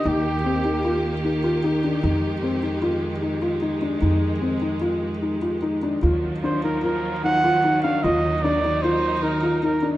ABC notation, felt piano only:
X:1
M:5/4
L:1/8
Q:1/4=151
K:Eb
V:1 name="Felt piano"
E2 C E F2 E F E D | E2 C E F2 E F E D | E2 C E F2 E F E D | F2 D E F2 E F E D |
F2 D E F2 E F E D |]